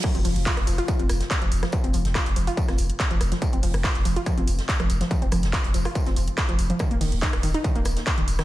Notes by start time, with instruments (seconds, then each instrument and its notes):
0.04 synth arpeggio sound F3, kick, cross-stick, closed hi-hat, crash
0.15 sub bass F1, synth arpeggio sound C4, closed hi-hat
0.25 sub bass F1, synth arpeggio sound F3, open hi-hat
0.36 sub bass F1, closed hi-hat
0.46 synth arpeggio sound F4, kick, snare, clap, closed hi-hat, tambourine
0.57 sub bass F1, cross-stick, closed hi-hat
0.67 sub bass F1, synth arpeggio sound F3, open hi-hat, tambourine
0.78 synth arpeggio sound F4, closed hi-hat
0.88 synth arpeggio sound F3, kick, closed hi-hat, tambourine
0.99 sub bass F1, synth arpeggio sound C4, closed hi-hat
1.09 sub bass F1, cross-stick, open hi-hat, tambourine
1.20 snare, closed hi-hat
1.30 kick, snare, clap, closed hi-hat, tambourine
1.42 sub bass F1, synth arpeggio sound F3, closed hi-hat
1.51 sub bass F1, open hi-hat, tambourine
1.63 synth arpeggio sound F3, cross-stick, snare, closed hi-hat
1.72 synth arpeggio sound F3, kick, closed hi-hat, tambourine
1.84 sub bass F1, synth arpeggio sound C4, closed hi-hat
1.93 sub bass F1, synth arpeggio sound F3, open hi-hat, tambourine
2.05 sub bass F1, snare, closed hi-hat
2.15 synth arpeggio sound F4, kick, cross-stick, snare, clap, closed hi-hat, tambourine
2.26 sub bass F1, closed hi-hat
2.36 sub bass F1, synth arpeggio sound F3, open hi-hat, tambourine
2.47 synth arpeggio sound F4, open hi-hat
2.57 synth arpeggio sound F3, kick, closed hi-hat, tambourine
2.68 sub bass F1, synth arpeggio sound C4, cross-stick, snare, closed hi-hat
2.78 sub bass F1, open hi-hat, tambourine
2.90 closed hi-hat
3.00 kick, snare, clap, closed hi-hat, tambourine
3.11 sub bass F1, synth arpeggio sound F3, closed hi-hat
3.21 sub bass F1, cross-stick, open hi-hat, tambourine
3.32 synth arpeggio sound F3, snare, closed hi-hat
3.42 synth arpeggio sound F3, kick, closed hi-hat, tambourine
3.53 sub bass F1, synth arpeggio sound C4, closed hi-hat
3.63 sub bass F1, synth arpeggio sound F3, open hi-hat
3.74 sub bass F1, cross-stick, closed hi-hat
3.84 synth arpeggio sound F4, kick, snare, clap, closed hi-hat, tambourine
3.95 sub bass F1, closed hi-hat
4.05 sub bass F1, synth arpeggio sound F3, open hi-hat, tambourine
4.16 synth arpeggio sound F4, closed hi-hat
4.26 synth arpeggio sound F3, kick, cross-stick, closed hi-hat, tambourine
4.37 sub bass F1, synth arpeggio sound C4, closed hi-hat
4.47 sub bass F1, open hi-hat, tambourine
4.58 snare, closed hi-hat
4.68 kick, snare, clap, closed hi-hat, tambourine
4.80 sub bass F1, synth arpeggio sound F3, cross-stick, closed hi-hat
4.90 sub bass F1, open hi-hat, tambourine
5.01 synth arpeggio sound F3, snare, closed hi-hat
5.11 synth arpeggio sound F3, kick, closed hi-hat, tambourine
5.22 sub bass F1, synth arpeggio sound C4, closed hi-hat
5.32 sub bass F1, synth arpeggio sound F3, cross-stick, open hi-hat, tambourine
5.43 sub bass F1, snare, closed hi-hat
5.53 synth arpeggio sound F4, kick, snare, clap, closed hi-hat, tambourine
5.64 sub bass F1, closed hi-hat
5.74 sub bass F1, synth arpeggio sound F3, open hi-hat, tambourine
5.85 synth arpeggio sound F4, cross-stick, open hi-hat
5.95 synth arpeggio sound F3, kick, closed hi-hat, tambourine
6.06 sub bass F1, synth arpeggio sound C4, snare, closed hi-hat
6.16 sub bass F1, synth arpeggio sound F3, open hi-hat, tambourine
6.28 closed hi-hat
6.38 kick, cross-stick, snare, clap, closed hi-hat, tambourine
6.49 sub bass F1, synth arpeggio sound F3, closed hi-hat
6.59 sub bass F1, open hi-hat, tambourine
6.70 synth arpeggio sound F3, closed hi-hat
6.79 synth arpeggio sound D#3, kick, cross-stick, closed hi-hat, tambourine
6.91 sub bass D#1, synth arpeggio sound A#3, closed hi-hat
7.01 sub bass D#1, synth arpeggio sound D#3, open hi-hat
7.12 sub bass D#1, closed hi-hat
7.22 synth arpeggio sound D#4, kick, snare, clap, closed hi-hat, tambourine
7.33 sub bass D#1, cross-stick, closed hi-hat
7.43 sub bass D#1, synth arpeggio sound D#3, open hi-hat, tambourine
7.54 synth arpeggio sound D#4, closed hi-hat
7.64 synth arpeggio sound D#3, kick, closed hi-hat, tambourine
7.75 sub bass D#1, synth arpeggio sound A#3, closed hi-hat
7.85 sub bass D#1, cross-stick, open hi-hat, tambourine
7.96 snare, closed hi-hat
8.06 kick, snare, clap, closed hi-hat, tambourine
8.18 sub bass D#1, synth arpeggio sound D#3, closed hi-hat
8.28 sub bass D#1, open hi-hat, tambourine
8.39 synth arpeggio sound D#3, cross-stick, snare, closed hi-hat